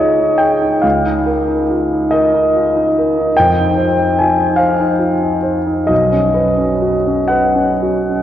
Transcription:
Already playing: C#2 D#4 G#4 C#5 D#5
0.00 F4
0.20 D#4
0.38 G#4 G5
0.62 D#4
0.82 C#2 F5
1.05 D#4
1.26 A#4
1.48 D#4
1.70 F4
1.93 D#4
2.11 A#4 D#5
2.33 D#4
2.56 F4
2.76 D#4
2.98 A#4
3.18 D#4
3.37 F2 G5
3.59 D#4
3.77 C5
3.99 D#4
4.19 F4 G#5
4.39 D#4
4.56 C5 F5
4.80 D#4
4.99 F4
5.22 D#4
5.43 C5
5.67 D#4
5.87 B1 D#5
6.12 C#4
6.34 B4
6.57 C#4
6.82 F#4
7.07 C#4
7.28 B4 F#5
7.55 C#4
7.82 F#4
8.09 C#4

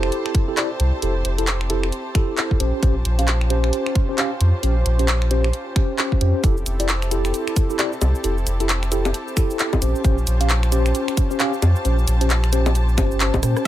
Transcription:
Already playing: F1 C4 E4 G4 A4 C5 A5
0.03 finger snap
0.12 closed hi-hat
0.26 finger snap
0.35 kick, closed hi-hat
0.48 E4 G4 A4
0.57 E4 G4 D5, clap, closed hi-hat
0.80 C2, closed hi-hat
1.02 F1 E4 G4 A4, closed hi-hat
1.25 F1, closed hi-hat
1.38 E4 G4 A4, closed hi-hat
1.47 clap, closed hi-hat
1.61 finger snap
1.70 E4 G4 A4, closed hi-hat
1.83 finger snap
1.92 closed hi-hat
2.15 E4 G4 A4, finger snap, kick, closed hi-hat
2.38 clap, closed hi-hat
2.51 kick
2.60 A#1 C#4 F4 G4 C5, closed hi-hat
2.83 A#1 C#4 G4 C5, kick, closed hi-hat
3.05 A#1, closed hi-hat
3.19 C#4 G4 F5, closed hi-hat
3.28 clap, closed hi-hat
3.41 finger snap
3.50 C#4 G4 C5, closed hi-hat
3.64 finger snap
3.73 closed hi-hat
3.86 finger snap
3.95 kick, closed hi-hat
4.09 C#4 G4 C5
4.18 C#4 G4 F5, clap, closed hi-hat
4.41 F2, closed hi-hat
4.63 A#1 C#4 G4 C5, closed hi-hat
4.86 A#1, closed hi-hat
4.99 C#4 G4 C5, closed hi-hat
5.08 clap, closed hi-hat
5.22 finger snap
5.31 C#4 G4 C5, closed hi-hat
5.44 finger snap
5.53 closed hi-hat
5.76 C#4 G4 C5, finger snap, kick, closed hi-hat
5.99 clap, closed hi-hat
6.12 kick
6.21 F2 C#4 G4 C5, closed hi-hat
6.44 F1 C4 E4 G4 A4, kick, closed hi-hat, cabasa
6.57 C5, cabasa
6.66 F1, closed hi-hat, cabasa
6.80 E4 G4 D5, closed hi-hat, cabasa
6.84 A5
6.89 clap, closed hi-hat, cabasa
7.02 finger snap, cabasa
7.11 E4 G4 A4, closed hi-hat, cabasa
7.25 finger snap, cabasa
7.34 closed hi-hat, cabasa
7.48 finger snap, cabasa
7.56 kick, closed hi-hat, cabasa
7.70 E4 G4 A4, cabasa
7.79 E4 G4 D5, clap, closed hi-hat, cabasa
7.93 cabasa
8.01 C2, closed hi-hat, high bongo, cabasa
8.15 cabasa
8.24 F1 E4 G4 A4, closed hi-hat, cabasa
8.38 cabasa
8.46 F1, closed hi-hat, cabasa
8.60 E4 G4 A4, closed hi-hat, cabasa
8.69 clap, closed hi-hat, cabasa
8.83 finger snap, cabasa
8.92 E4 G4 A4, closed hi-hat, cabasa
9.05 finger snap, high bongo, cabasa
9.14 closed hi-hat, cabasa
9.28 cabasa
9.37 E4 G4 A4, finger snap, kick, closed hi-hat, cabasa
9.50 cabasa
9.59 clap, closed hi-hat, cabasa
9.73 kick, high bongo, cabasa
9.82 A#1 C#4 F4 G4 C5, closed hi-hat, cabasa
9.95 cabasa
10.04 A#1 C#4 G4 C5, kick, closed hi-hat, cabasa
10.18 cabasa
10.27 A#1, closed hi-hat, cabasa
10.41 C#4 G4 F5, closed hi-hat, cabasa
10.50 clap, closed hi-hat, cabasa
10.63 finger snap, cabasa
10.72 C#4 G4 C5, closed hi-hat, cabasa
10.86 finger snap, cabasa
10.95 closed hi-hat, cabasa
11.08 finger snap, cabasa
11.17 kick, closed hi-hat, cabasa
11.31 C#4 G4 C5, cabasa
11.40 C#4 G4 F5, clap, closed hi-hat, cabasa
11.53 cabasa
11.62 F2, closed hi-hat, high bongo, cabasa
11.76 cabasa
11.85 A#1 C#4 G4 C5, closed hi-hat, cabasa
11.99 cabasa
12.07 A#1, closed hi-hat, cabasa
12.21 C#4 G4 C5, closed hi-hat, cabasa
12.30 clap, closed hi-hat, cabasa
12.44 finger snap, cabasa
12.53 C#4 G4 C5, closed hi-hat, cabasa
12.66 finger snap, high bongo, cabasa
12.75 closed hi-hat, cabasa
12.89 cabasa
12.98 G1 C#4 G4 C5, finger snap, kick, closed hi-hat, high bongo, cabasa
13.11 cabasa
13.20 clap, closed hi-hat, cabasa
13.34 A#1, kick, high bongo, cabasa
13.43 A#2 C#4 G4 C5, cross-stick, closed hi-hat, cabasa
13.57 cross-stick, cabasa

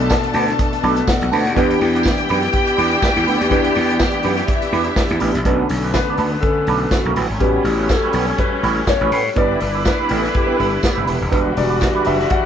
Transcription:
Already playing: B1 B2 A3 B3 D4 A4 A5
0.01 A3 D4 F#4 B4, closed hi-hat
0.10 kick, snare, tambourine
0.23 muted clean electric guitar stroke, closed hi-hat
0.33 D2 A3 D4 F#4 B4, open hi-hat
0.48 muted clean electric guitar stroke, snare, closed hi-hat
0.59 muted clean electric guitar stroke, kick, closed hi-hat
0.73 muted clean electric guitar stroke, closed hi-hat
0.82 B1 B2 A3 B3 D4 F#4 A4 B4, open hi-hat
0.97 A3 D4 F#4 B4, closed hi-hat
1.07 F#4 F#5, muted clean electric guitar stroke, kick, snare, tambourine
1.21 B1, muted clean electric guitar stroke, closed hi-hat
1.32 D2 A3 D4 F#4 B4, open hi-hat
1.45 D#2, muted clean electric guitar stroke, closed hi-hat
1.54 E2 E3 B3 D4 G4 B4 G5, kick, closed hi-hat
1.70 closed hi-hat
1.81 E2, muted clean electric guitar stroke, open hi-hat
1.95 B3 D4 G4 B4, closed hi-hat
2.03 kick, snare, tambourine
2.18 muted clean electric guitar stroke, closed hi-hat
2.29 F#2 B3 D4 G4 B4, open hi-hat
2.43 muted clean electric guitar stroke, snare, closed hi-hat
2.53 muted clean electric guitar stroke, kick, closed hi-hat
2.67 muted clean electric guitar stroke, closed hi-hat
2.77 E2 B3 D4 G4 B4, open hi-hat
2.91 B3 D4 G4 B4, closed hi-hat
3.02 kick, snare, tambourine
3.16 E2, muted clean electric guitar stroke, closed hi-hat
3.27 D2 B3 D4 G4 B4, open hi-hat
3.40 D#2, muted clean electric guitar stroke, closed hi-hat
3.49 E2 E3 B3 D4 G4 B4, kick, closed hi-hat
3.65 closed hi-hat
3.75 E2, muted clean electric guitar stroke, open hi-hat
3.89 B3 D4 G4 B4, closed hi-hat
3.99 kick, snare, tambourine
4.11 muted clean electric guitar stroke, closed hi-hat
4.23 F#2 B3 D4 G4 B4, open hi-hat
4.37 muted clean electric guitar stroke, snare, closed hi-hat
4.48 E4 E5, muted clean electric guitar stroke, kick, closed hi-hat
4.61 muted clean electric guitar stroke, closed hi-hat
4.72 E2 B3 D4 G4 B4, open hi-hat
4.84 B3 D4 G4 B4, closed hi-hat
4.96 kick, snare, tambourine
5.08 E2, muted clean electric guitar stroke, closed hi-hat
5.20 A1 B3 D4 G4 B4, open hi-hat
5.35 A#1, muted clean electric guitar stroke, closed hi-hat
5.45 B1 D3 A3 B3 C#4 D4 F#4 B4, kick, closed hi-hat
5.69 B1, open hi-hat
5.84 A3 D4 F#4 B4
5.94 B4, kick, snare, closed hi-hat, tambourine
6.08 A3 D4 F#4 B4
6.17 D2 A3 D4 F#4 B4, open hi-hat
6.33 muted clean electric guitar stroke
6.40 D3 A3 C#4 A4, muted clean electric guitar stroke, kick, closed hi-hat
6.57 muted clean electric guitar stroke
6.67 B1 A3 D4 F#4 B4, open hi-hat
6.81 A3 D4 F#4 B4
6.90 F#4, kick, snare, closed hi-hat, tambourine
7.05 B1 A3 D4 F#4 B4
7.16 A1 G3 C#4 F#4 B4, open hi-hat
7.30 G#1
7.40 A1 G3 B3 C#4 F#4 G4 B4, kick, closed hi-hat
7.64 A1, open hi-hat
7.78 G3 C#4 F#4 B4
7.89 A4, kick, snare, closed hi-hat, tambourine
8.03 G3 C#4 F#4 B4
8.13 B1 G3 C#4 F#4 B4, open hi-hat
8.28 muted clean electric guitar stroke
8.38 B4, muted clean electric guitar stroke, kick, closed hi-hat
8.53 muted clean electric guitar stroke
8.63 A1 G3 C#4 F#4 B4, open hi-hat
8.76 muted clean electric guitar stroke
8.87 C#5, muted clean electric guitar stroke, kick, snare, closed hi-hat, tambourine
9.01 A1 G3 C#4 F#4 B4
9.12 A2 G3 C#4 F#4 B4, open hi-hat
9.26 muted clean electric guitar stroke
9.36 G1 G3 B3 D4 E4 G4 B4 D5, kick, closed hi-hat
9.60 G1, muted clean electric guitar stroke, open hi-hat
9.75 B3 E4 G4 B4
9.85 B4, kick, snare, closed hi-hat, tambourine
9.99 B3 E4 G4 B4
10.09 A1 A3 B3 E4 G4 B4, open hi-hat
10.24 muted clean electric guitar stroke, snare
10.34 G4, muted clean electric guitar stroke, kick, closed hi-hat
10.47 B3 E4 G4 B4
10.58 G1 B3 E4 G4 B4, open hi-hat
10.72 muted clean electric guitar stroke
10.83 muted clean electric guitar stroke, kick, snare, closed hi-hat, tambourine
10.96 G1 B3 E4 G4 B4
11.06 E1 B3 E4 G4 B4, open hi-hat
11.20 D#1, muted clean electric guitar stroke
11.30 E1 D3 E3 G3 D4 F#4 B4, kick, closed hi-hat
11.56 E1 G3 D4 F#4 D5, muted clean electric guitar stroke, open hi-hat
11.69 G3 D4 F#4 B4
11.81 muted clean electric guitar stroke, kick, snare, closed hi-hat, tambourine
11.95 G3 D4 F#4 B4
12.05 F#1 G3 D4 F#4 B4 E5, open hi-hat
12.20 snare
12.30 F#5, muted clean electric guitar stroke, kick, closed hi-hat

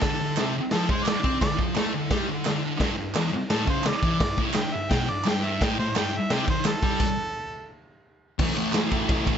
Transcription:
Already playing: A4
0.01 D3, kick, snare, crash
0.21 D3
0.37 C3, snare, clap, crash
0.58 muted distorted electric guitar stroke
0.71 F3 A4, snare, crash
0.89 G#3 C5, kick
1.04 D5, snare, clap, crash
1.23 C4, kick
1.41 D3 D5, kick, snare, crash
1.57 F3, kick
1.75 A3, snare, clap, crash
1.94 D3
2.10 G3, kick, snare, crash
2.28 D3
2.45 D3, snare, clap, crash
2.78 G2, kick, snare, crash
2.98 G2
3.15 E2, snare, clap, crash
3.33 muted distorted electric guitar stroke
3.50 A2 A4, snare, crash
3.66 C#3 C5, kick
3.84 snare, clap, crash
3.89 D5
4.02 E3, kick
4.20 G2 D5, kick, snare, crash
4.38 A2, kick
4.54 D3 G5, snare, clap, crash
4.73 G2 E5
4.90 B2 G5, kick, snare, crash
5.09 G2 D5
5.24 G2, snare, clap, crash
5.29 G5
5.44 E5
5.61 A2 G5, kick, snare, crash
5.79 A2 C5
5.96 G2 G5, snare, clap, crash
6.14 E5, muted distorted electric guitar stroke
6.30 C3 G5, snare, crash
6.48 D#3 C5, kick
6.65 A4, snare, clap, crash
6.83 G3, kick
7.00 kick, crash
8.39 A2 E3 A3, kick, crash
8.55 A2 E3 A3, ride
8.73 A2 E3 A3, snare, clap, ride
8.91 A2 E3 A3, kick, ride
9.09 A2 E3 A3, kick, ride
9.26 A2 E3 A3, kick, ride

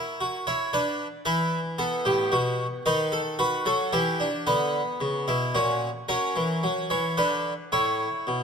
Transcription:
Already playing: E4 A#4
0.20 F#4
0.47 E4 C#5
0.73 D4 B4
1.25 E3 E4 B4
1.78 B3 A4
2.05 A2 G4
2.32 B2 F#4
2.86 D#3 D#4 B4
3.12 A4
3.39 F#4 B4
3.66 F#3 A4
3.93 E3 E4 G4
4.20 D4
4.47 D3 B3 B4
5.01 C#3
5.28 B2 E4
5.55 A#2 C#4 F#4
6.09 F#3 C#4 A#4
6.36 E3
6.63 F#3
6.90 E3 C#5
7.17 D3 D4 B4
7.72 A2 E4 C#5
8.27 B2

